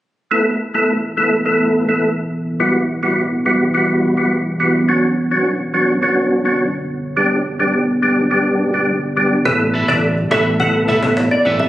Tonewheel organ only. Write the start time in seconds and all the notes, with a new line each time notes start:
0.31 A3 B3 E4 A4
0.74 A3 B3 E4 A4
1.17 A3 B3 E4 A4
1.46 A3 B3 E4 A4
1.88 A3 B3 E4 A4
2.60 G3 B3 E4 F#4
3.03 G3 B3 E4 F#4
3.46 G3 B3 E4 F#4
3.74 G3 B3 E4 F#4
4.17 G3 B3 E4 F#4
4.60 G3 B3 E4 F#4
4.88 F#3 B3 C#4 D4 F#4
5.31 F#3 B3 C#4 D4 F#4
5.74 F#3 B3 C#4 D4 F#4
6.02 F#3 B3 C#4 D4 F#4
6.45 F#3 B3 C#4 D4 F#4
7.17 G3 B3 D4 G4
7.59 G3 B3 D4 G4
8.02 G3 B3 D4 G4
8.31 G3 B3 D4 G4
8.74 G3 B3 D4 G4
9.17 G3 B3 D4 G4
9.45 A3 B3 E4 A4
9.88 A3 B3 E4 A4
10.31 A3 B3 E4 A4
10.60 A3 B3 E4 A4
11.03 A3 B3 E4 A4